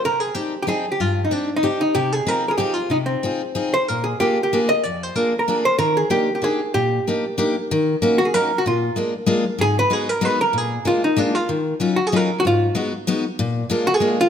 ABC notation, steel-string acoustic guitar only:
X:1
M:3/4
L:1/8
Q:1/4=189
K:Eb
V:1 name="Steel-string acoustic guitar"
C,2 [CDEG] z [CDEG] z | G,,2 [CDEG] z [CDEG] z | C,2 [CEFA] z [CEFA] z | C,2 [CEFA] z [CEFA] z |
B,,2 [B,DFA] z [B,DFA] z | F,,2 [B,DFA] z [B,DFA] z | E,2 [B,DEG] z [B,DEG] z | B,,2 [B,DEG] z [B,DEG] z |
[K:Ebm] E,2 [B,DEG] z [B,DEG] z | B,,2 [A,B,=DF] z [A,B,DF] z | A,,2 [A,CEG] z [A,CEG] z | B,,2 [A,B,=DF] z [A,B,DF] z |
E,2 [G,DEF] z [G,DEF] z | A,,2 [A,CEG] z [A,CEG] z | B,,2 [A,B,=DF] z [A,B,DF] z |]